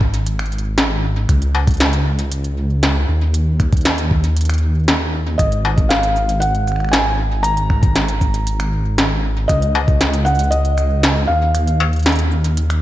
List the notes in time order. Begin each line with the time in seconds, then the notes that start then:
Already playing: G#1
0.01 kick
0.14 closed hi-hat
0.27 closed hi-hat
0.39 finger snap, closed hi-hat
0.46 closed hi-hat
0.52 closed hi-hat
0.58 closed hi-hat
0.78 snare, closed hi-hat
1.29 C#2, finger snap, kick, closed hi-hat
1.42 closed hi-hat
1.55 finger snap, struck metal
1.67 kick, closed hi-hat
1.71 closed hi-hat
1.74 closed hi-hat
1.77 snare, closed hi-hat
1.80 closed hi-hat
1.93 closed hi-hat
2.19 closed hi-hat
2.32 closed hi-hat
2.44 closed hi-hat
2.83 snare, closed hi-hat
3.08 D#2
3.34 closed hi-hat
3.60 finger snap, kick, closed hi-hat
3.73 kick, closed hi-hat
3.77 closed hi-hat
3.81 closed hi-hat
3.85 snare, closed hi-hat
3.98 closed hi-hat
4.11 kick
4.24 closed hi-hat
4.37 closed hi-hat
4.41 closed hi-hat
4.45 closed hi-hat
4.49 finger snap, closed hi-hat
4.54 closed hi-hat
4.58 closed hi-hat
4.88 snare, closed hi-hat
5.38 G#1 D#5, finger snap, kick, closed hi-hat
5.52 closed hi-hat
5.65 finger snap, struck metal
5.78 kick, closed hi-hat
5.89 F5, snare, closed hi-hat
6.03 closed hi-hat
6.16 shaker
6.29 closed hi-hat
6.40 F#5, closed hi-hat
6.55 closed hi-hat
6.68 finger snap, shaker
6.72 finger snap
6.76 finger snap
6.80 finger snap
6.84 finger snap
6.89 G#5, finger snap
6.93 snare, closed hi-hat
7.43 A#5, closed hi-hat
7.57 closed hi-hat
7.70 finger snap, kick
7.83 kick, closed hi-hat
7.96 snare, closed hi-hat
8.08 closed hi-hat
8.21 kick, shaker
8.34 closed hi-hat
8.47 closed hi-hat
8.60 finger snap, closed hi-hat
8.98 snare, closed hi-hat
9.48 C#2 D#5, finger snap, kick, closed hi-hat
9.62 closed hi-hat
9.75 finger snap, struck metal
9.88 kick, closed hi-hat
10.01 snare, closed hi-hat
10.14 closed hi-hat
10.25 F#5, shaker
10.35 shaker
10.39 closed hi-hat
10.43 shaker
10.51 D#5, closed hi-hat
10.65 closed hi-hat
10.78 finger snap, shaker
11.03 snare, closed hi-hat
11.27 D#2 F5
11.55 finger snap, closed hi-hat
11.67 closed hi-hat
11.80 finger snap, struck metal
11.93 closed hi-hat, shaker
11.96 closed hi-hat
11.99 closed hi-hat
12.03 snare, closed hi-hat
12.06 closed hi-hat
12.09 closed hi-hat
12.12 closed hi-hat
12.16 closed hi-hat
12.19 closed hi-hat
12.32 shaker
12.44 closed hi-hat
12.57 closed hi-hat
12.70 finger snap, closed hi-hat